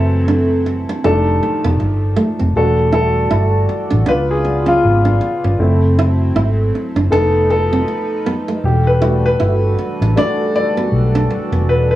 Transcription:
0.00 0.84 F#1 loud
0.00 0.62 E3 medium
0.00 1.02 F#3 medium
0.00 0.62 A3 soft
0.00 0.62 C4 medium
0.00 1.02 C4 medium
0.00 1.02 E4 medium
0.00 1.01 A4 medium
0.00 1.02 A4 medium
0.00 1.03 A5 loud
0.28 0.41 D4 medium
0.66 muted nylon-string guitar stroke soft
0.89 0.98 D4 medium
1.02 1.39 F1 medium
1.02 2.53 D#3 medium
1.02 2.52 D#3 medium
1.02 2.53 F3 medium
1.02 2.52 G3 medium
1.02 2.53 A3 medium
1.02 2.52 A3 soft
1.02 2.52 D4 medium
1.02 1.17 D#4 medium
1.02 2.14 A4 medium
1.02 2.14 A5 medium
1.43 muted nylon-string guitar stroke soft
1.64 1.79 F1 medium
1.64 1.73 B3 medium
1.80 2.15 G1 medium
1.80 muted nylon-string guitar stroke soft
2.16 2.30 A3 medium
2.39 2.54 F1 medium
2.39 2.48 C4 medium
2.53 3.27 E1 medium
2.53 4.05 E3 medium
2.53 4.05 G3 medium
2.53 3.65 G3 soft
2.53 3.65 A3 soft
2.53 3.66 D4 soft
2.53 4.05 F#4 medium
2.53 3.66 F#4 medium
2.53 4.05 A4 medium
2.53 2.91 A4 medium
2.53 5.55 D5 medium
2.92 3.06 E4 medium
2.92 4.03 A4 medium
3.31 3.66 G1 medium
3.31 3.44 E4 medium
3.69 muted nylon-string guitar stroke soft
3.91 4.06 A1 medium
3.91 4.00 D4 medium
4.06 4.79 C#2 medium
4.06 5.57 C#3 medium
4.06 5.57 B3 medium
4.06 4.60 B3 medium
4.06 4.19 D4 medium
4.06 4.61 D4 medium
4.06 5.57 F4 medium
4.06 4.61 F4 medium
4.06 4.31 B4 loud
4.31 4.66 G#4 medium
4.45 muted nylon-string guitar stroke soft
4.66 4.76 C#4 medium
4.66 5.40 F4 medium
4.84 5.18 G#1 medium
5.05 5.14 D4 medium
5.21 muted nylon-string guitar stroke soft
5.44 5.58 G1 medium
5.44 5.53 C#4 medium
5.57 6.31 F#1 loud
5.57 7.09 F#3 medium
5.57 6.12 A3 soft
5.57 7.08 C4 medium
5.57 6.12 C4 soft
5.57 7.08 E4 medium
5.57 6.13 E4 medium
5.57 11.96 A4 medium
5.99 6.11 E4 medium
6.36 6.70 G#1 medium
6.36 6.49 E4 medium
6.75 muted nylon-string guitar stroke soft
6.96 7.10 F#1 medium
6.96 7.05 D4 medium
7.10 7.83 F1 medium
7.10 8.61 F3 medium
7.10 7.64 A3 medium
7.10 7.64 B3 medium
7.10 7.25 D4 medium
7.10 8.61 D#4 medium
7.10 7.65 D#4 medium
7.10 7.47 A4 medium
7.10 8.61 B4 medium
7.50 8.67 A4 medium
7.50 muted nylon-string guitar stroke soft
7.73 7.81 C4 medium
7.88 muted nylon-string guitar stroke soft
8.26 8.39 B3 medium
8.48 8.57 A3 medium
8.62 9.35 E1 loud
8.62 11.96 E3 medium
8.62 11.96 G3 medium
8.62 11.96 D4 medium
8.62 11.96 F#4 medium
8.62 8.85 G4 medium
8.87 9.24 B4 medium
9.01 10.11 G3 medium
9.01 10.11 A3 medium
9.01 10.11 D4 soft
9.01 9.14 E4 medium
9.01 10.11 F#4 medium
9.26 9.96 B4 loud
9.40 9.75 G1 medium
9.40 9.53 E4 medium
9.78 muted nylon-string guitar stroke soft
10.01 10.14 A1 medium
10.01 10.10 D4 medium
10.15 10.49 G3 medium
10.15 10.49 A3 soft
10.15 10.49 D4 medium
10.15 10.29 D4 medium
10.15 10.50 F#4 medium
10.15 10.54 D5 loud
10.55 11.71 D5 loud
10.55 muted nylon-string guitar stroke soft
10.77 10.86 B3 medium
10.92 11.26 B1 medium
11.15 11.24 D4 medium
11.31 muted nylon-string guitar stroke soft
11.52 11.67 F1 medium
11.52 11.61 B3 medium
11.67 11.96 E1 loud
11.67 11.90 B4 medium
11.91 11.96 B4 medium

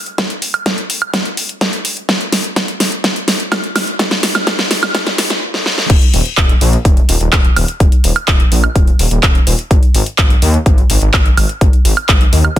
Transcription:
0.06 closed hi-hat soft
0.18 kick loud
0.18 snare medium
0.18 closed hi-hat medium
0.30 closed hi-hat soft
0.42 open hi-hat loud
0.54 closed hi-hat soft
0.54 high woodblock medium
0.66 kick loud
0.66 snare medium
0.66 closed hi-hat medium
0.78 closed hi-hat soft
0.90 open hi-hat loud
1.02 closed hi-hat soft
1.02 high woodblock medium
1.14 kick loud
1.14 snare medium
1.14 closed hi-hat medium
1.25 closed hi-hat soft
1.37 open hi-hat loud
1.49 closed hi-hat soft
1.61 kick loud
1.61 snare medium
1.61 closed hi-hat medium
1.73 closed hi-hat soft
1.85 open hi-hat loud
1.97 closed hi-hat soft
2.09 kick loud
2.09 snare medium
2.09 closed hi-hat medium
2.21 closed hi-hat soft
2.32 snare medium
2.32 open hi-hat loud
2.44 closed hi-hat soft
2.56 kick loud
2.56 snare medium
2.56 closed hi-hat medium
2.68 closed hi-hat soft
2.80 snare medium
2.80 open hi-hat loud
2.92 closed hi-hat soft
3.04 kick loud
3.04 snare medium
3.04 closed hi-hat medium
3.16 closed hi-hat soft
3.28 snare medium
3.28 open hi-hat loud
3.40 closed hi-hat soft
3.52 kick loud
3.52 snare medium
3.52 closed hi-hat medium
3.52 high woodblock medium
3.64 closed hi-hat soft
3.76 snare medium
3.76 open hi-hat loud
3.76 high woodblock medium
3.87 closed hi-hat soft
3.99 kick loud
3.99 snare medium
3.99 closed hi-hat medium
4.11 snare medium
4.11 closed hi-hat soft
4.23 snare medium
4.23 open hi-hat loud
4.35 snare medium
4.35 closed hi-hat soft
4.35 high woodblock medium
4.47 kick loud
4.47 snare loud
4.47 closed hi-hat medium
4.59 snare medium
4.59 closed hi-hat soft
4.71 snare loud
4.71 open hi-hat loud
4.83 snare medium
4.83 closed hi-hat soft
4.83 high woodblock medium
4.95 kick loud
4.95 snare loud
4.95 closed hi-hat medium
5.07 snare medium
5.07 closed hi-hat soft
5.18 snare loud
5.18 open hi-hat loud
5.30 snare medium
5.30 closed hi-hat soft
5.54 snare medium
5.66 snare medium
5.78 snare medium
5.90 5.97 D#1 loud
5.90 kick loud
5.90 closed hi-hat medium
5.90 crash loud
6.02 closed hi-hat soft
6.14 6.21 D#1 medium
6.14 open hi-hat loud
6.26 closed hi-hat soft
6.37 6.53 D#1 medium
6.37 kick loud
6.37 clap loud
6.37 closed hi-hat medium
6.49 closed hi-hat soft
6.61 6.76 A#1 medium
6.61 open hi-hat loud
6.73 closed hi-hat soft
6.85 7.00 D#1 medium
6.85 kick loud
6.85 closed hi-hat medium
6.97 closed hi-hat soft
7.09 7.16 D#1 loud
7.09 open hi-hat loud
7.21 7.28 D#1 medium
7.21 closed hi-hat soft
7.33 7.48 D#1 medium
7.33 kick loud
7.33 clap loud
7.33 closed hi-hat medium
7.33 high woodblock medium
7.45 closed hi-hat soft
7.56 7.64 D#1 loud
7.56 open hi-hat loud
7.56 high woodblock medium
7.68 closed hi-hat soft
7.80 7.88 D#1 loud
7.80 kick loud
7.80 closed hi-hat medium
7.92 closed hi-hat soft
8.04 8.12 D#1 medium
8.04 open hi-hat loud
8.16 closed hi-hat soft
8.16 high woodblock medium
8.28 8.43 D#1 medium
8.28 kick loud
8.28 clap loud
8.28 closed hi-hat medium
8.40 closed hi-hat soft
8.52 8.67 A#1 loud
8.52 open hi-hat loud
8.64 closed hi-hat soft
8.64 high woodblock medium
8.75 8.91 D#1 medium
8.75 kick loud
8.75 closed hi-hat medium
8.87 closed hi-hat soft
8.99 9.07 D#1 loud
8.99 open hi-hat loud
9.11 9.19 D#1 medium
9.11 closed hi-hat soft
9.23 9.38 D#1 medium
9.23 kick loud
9.23 clap loud
9.23 closed hi-hat medium
9.35 closed hi-hat soft
9.47 9.54 D#1 medium
9.47 open hi-hat loud
9.59 closed hi-hat soft
9.71 9.78 G#1 loud
9.71 kick loud
9.71 closed hi-hat medium
9.83 closed hi-hat soft
9.94 10.02 G#1 medium
9.94 open hi-hat loud
10.06 closed hi-hat soft
10.18 10.34 G#1 medium
10.18 kick loud
10.18 clap loud
10.18 closed hi-hat medium
10.30 closed hi-hat soft
10.42 10.57 D#2 loud
10.42 open hi-hat loud
10.54 closed hi-hat soft
10.66 10.81 G#1 medium
10.66 kick loud
10.66 closed hi-hat medium
10.78 closed hi-hat soft
10.90 10.97 G#1 loud
10.90 open hi-hat loud
11.02 11.09 G#1 medium
11.02 closed hi-hat soft
11.14 11.29 G#1 medium
11.14 kick loud
11.14 clap loud
11.14 closed hi-hat medium
11.14 high woodblock medium
11.26 closed hi-hat soft
11.37 11.45 G#1 medium
11.37 open hi-hat loud
11.37 high woodblock medium
11.49 closed hi-hat soft
11.61 11.69 G#1 loud
11.61 kick loud
11.61 closed hi-hat medium
11.73 closed hi-hat soft
11.85 11.93 G#1 medium
11.85 open hi-hat loud
11.97 closed hi-hat soft
11.97 high woodblock medium
12.09 12.24 G#1 medium
12.09 kick loud
12.09 clap loud
12.09 closed hi-hat medium
12.21 closed hi-hat soft
12.33 12.48 D#2 loud
12.33 open hi-hat loud
12.45 closed hi-hat soft
12.45 high woodblock medium

